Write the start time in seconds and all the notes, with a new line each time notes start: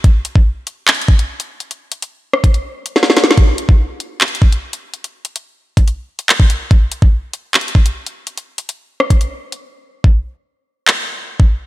0.04 kick, closed hi-hat
0.25 closed hi-hat
0.36 kick
0.67 closed hi-hat
0.88 clap, closed hi-hat
0.95 closed hi-hat
1.02 closed hi-hat
1.08 kick
1.19 closed hi-hat
1.40 closed hi-hat
1.60 closed hi-hat
1.71 closed hi-hat
1.92 closed hi-hat
2.02 closed hi-hat
2.33 cross-stick
2.44 kick, closed hi-hat
2.54 closed hi-hat
2.86 closed hi-hat
2.96 snare
3.03 snare
3.10 snare
3.17 snare, closed hi-hat
3.24 snare
3.31 snare
3.37 kick, closed hi-hat
3.58 closed hi-hat
3.69 kick
4.00 closed hi-hat
4.21 clap, closed hi-hat
4.28 closed hi-hat
4.35 closed hi-hat
4.42 kick
4.52 closed hi-hat
4.73 closed hi-hat
4.94 closed hi-hat
5.04 closed hi-hat
5.25 closed hi-hat
5.36 closed hi-hat
5.77 kick, closed hi-hat
5.88 closed hi-hat
6.19 closed hi-hat
6.29 clap, closed hi-hat
6.40 kick
6.50 closed hi-hat
6.71 kick, closed hi-hat
6.92 closed hi-hat
7.02 kick
7.33 closed hi-hat
7.54 clap, closed hi-hat
7.61 closed hi-hat
7.68 closed hi-hat
7.75 kick
7.86 closed hi-hat
8.06 closed hi-hat
8.27 closed hi-hat
8.37 closed hi-hat
8.58 closed hi-hat
8.69 closed hi-hat
9.00 cross-stick
9.10 kick, closed hi-hat
9.21 closed hi-hat
9.52 closed hi-hat
10.04 kick
10.88 clap
11.40 kick